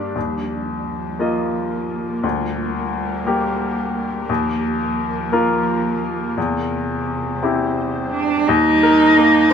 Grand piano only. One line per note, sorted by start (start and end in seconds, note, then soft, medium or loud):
0.00 0.17 G2 soft
0.00 0.11 A#3 soft
0.00 0.11 D4 soft
0.00 0.12 D5 soft
0.15 1.17 D#2 soft
1.19 2.20 A#3 soft
1.19 2.20 F4 soft
1.19 2.20 D#5 soft
2.24 3.23 D2 soft
3.27 4.25 A#3 soft
3.27 4.25 G4 soft
3.27 4.25 A#4 soft
4.29 5.29 D#2 soft
5.32 6.33 A#3 soft
5.32 6.33 F4 soft
5.32 6.33 A#4 soft
6.37 7.39 E2 soft
7.42 8.44 C4 soft
7.42 8.44 E4 soft
7.42 8.44 G4 soft
8.49 9.53 D#2 medium
8.83 9.38 A#4 medium
9.17 9.53 A#3 medium